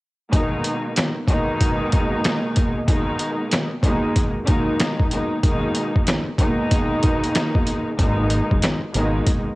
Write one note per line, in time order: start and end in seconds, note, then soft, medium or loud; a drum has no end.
0.32 1.08 B2 medium
0.32 1.08 D#3 medium
0.32 1.09 G#3 medium
0.32 1.09 A#3 medium
0.32 1.09 D#4 loud
0.32 kick loud
0.32 closed hi-hat medium
0.64 closed hi-hat medium
0.96 snare loud
0.96 snare medium
0.96 closed hi-hat loud
1.28 2.78 B2 loud
1.28 2.78 D#3 loud
1.28 2.79 G#3 medium
1.28 2.79 A#3 loud
1.28 2.79 D#4 loud
1.28 kick medium
1.28 closed hi-hat medium
1.61 kick medium
1.61 closed hi-hat loud
1.92 kick loud
1.92 closed hi-hat medium
2.24 snare loud
2.24 snare medium
2.24 closed hi-hat medium
2.56 kick medium
2.56 closed hi-hat medium
2.87 3.64 B2 medium
2.87 3.64 D#3 medium
2.87 3.64 G#3 loud
2.87 3.64 A#3 medium
2.87 3.64 D#4 loud
2.87 kick loud
2.87 closed hi-hat medium
3.19 closed hi-hat medium
3.51 snare loud
3.51 snare medium
3.51 closed hi-hat medium
3.83 4.31 B2 loud
3.83 4.31 D#3 medium
3.83 4.31 G#3 loud
3.83 4.31 A#3 medium
3.83 4.31 D#4 loud
3.83 kick medium
3.83 closed hi-hat medium
4.16 kick medium
4.16 closed hi-hat loud
4.45 5.06 B2 medium
4.45 5.07 D#3 medium
4.45 5.07 G#3 medium
4.45 5.07 A#3 medium
4.45 5.07 D#4 loud
4.45 kick loud
4.45 closed hi-hat medium
4.80 snare loud
4.80 snare medium
4.80 closed hi-hat medium
5.00 kick medium
5.11 5.41 B2 medium
5.11 5.41 D#3 medium
5.11 5.42 G#3 medium
5.11 5.42 A#3 medium
5.11 5.42 D#4 medium
5.11 closed hi-hat medium
5.42 6.19 B2 loud
5.42 6.19 D#3 medium
5.42 6.19 G#3 medium
5.42 6.19 A#3 medium
5.42 6.20 D#4 loud
5.42 kick loud
5.42 closed hi-hat loud
5.75 closed hi-hat medium
5.96 kick medium
6.07 snare loud
6.07 snare medium
6.07 closed hi-hat medium
6.38 7.89 B2 loud
6.38 7.89 D#3 loud
6.38 7.90 G#3 medium
6.38 7.90 A#3 loud
6.38 7.90 D#4 loud
6.38 kick medium
6.38 closed hi-hat medium
6.71 kick medium
6.71 closed hi-hat loud
7.03 kick loud
7.03 closed hi-hat medium
7.24 closed hi-hat medium
7.35 snare loud
7.35 snare medium
7.35 closed hi-hat medium
7.55 kick medium
7.67 closed hi-hat medium
7.98 8.40 G#1 loud
7.98 8.74 B2 loud
7.98 8.75 D#3 medium
7.98 8.75 G#3 loud
7.98 8.75 A#3 medium
7.98 8.75 D#4 loud
7.98 kick loud
7.98 closed hi-hat loud
8.30 closed hi-hat medium
8.51 8.60 F#1 medium
8.51 kick medium
8.62 snare loud
8.62 snare medium
8.62 closed hi-hat loud
8.94 9.20 G#1 medium
8.94 9.41 B2 loud
8.94 9.42 D#3 medium
8.94 9.42 G#3 loud
8.94 9.42 A#3 medium
8.94 9.42 D#4 loud
8.94 closed hi-hat medium
9.27 kick medium
9.27 closed hi-hat loud